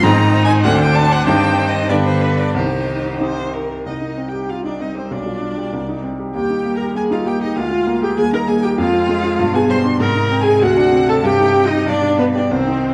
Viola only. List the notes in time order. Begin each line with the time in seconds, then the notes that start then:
0.04 D#4
0.64 D4
1.90 D4
2.55 D#4
3.86 D#4
4.29 G4
4.50 F4
4.66 D4
4.81 D#4
4.97 C4
5.12 D4
6.35 G4
6.77 A#4
6.96 G#4
7.12 F4
7.26 G4
7.42 D#4
7.57 F4
8.03 G4
8.17 G#4
8.34 A#4
8.48 G#4
8.64 G4
8.78 F4
9.55 G#4
9.70 C5
10.00 A#4
10.43 G#4
10.61 F#4
11.09 A4
11.24 G4
11.67 D#4
11.88 D4
12.19 B3
12.37 D4
12.52 C4